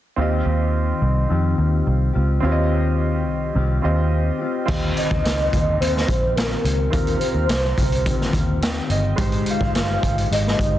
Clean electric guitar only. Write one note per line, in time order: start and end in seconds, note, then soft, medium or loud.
0.17 1.29 D#3 medium
0.17 1.29 C4 medium
0.17 1.30 F4 medium
0.22 1.32 G4 medium
1.29 2.18 D#3 medium
1.29 2.16 C4 medium
1.29 2.15 F4 medium
1.29 2.13 G4 medium
2.13 2.42 C4 soft
2.13 2.43 F4 medium
2.13 2.42 G4 medium
2.41 3.54 D#3 medium
2.41 3.55 C4 medium
2.41 3.56 F4 medium
2.46 3.57 G4 medium
3.54 4.44 D#3 medium
3.54 4.42 C4 medium
3.54 4.41 F4 medium
3.54 4.38 G4 medium
4.39 4.68 C4 soft
4.39 4.69 F4 medium
4.39 4.68 G4 medium
4.67 5.79 D#3 medium
4.67 5.81 F4 medium
4.72 5.82 G4 medium
5.79 6.36 D#3 medium
5.79 6.36 C4 medium
5.79 6.37 F4 medium
5.79 6.38 G4 medium
6.36 6.91 D#3 medium
6.36 6.92 C4 medium
6.36 6.92 F4 medium
6.36 6.94 G4 medium
6.91 7.20 D#3 medium
6.91 7.21 C4 medium
6.91 7.21 F4 medium
6.91 7.19 G4 medium
7.21 8.06 C4 soft
7.21 8.06 F4 soft
7.21 8.08 G4 soft
8.05 8.61 D#3 medium
8.05 8.62 C4 medium
8.05 8.63 F4 medium
8.05 8.64 G4 medium
8.61 10.79 D#3 medium
8.61 9.18 C4 medium
8.61 9.19 F4 medium
8.61 9.20 G4 medium
9.17 10.30 G#3 medium
9.17 10.30 D#4 medium
9.17 10.31 G4 medium
9.22 10.34 C5 medium
10.30 10.79 G#3 medium
10.30 10.79 D#4 medium
10.30 10.79 G4 medium
10.30 10.79 C5 medium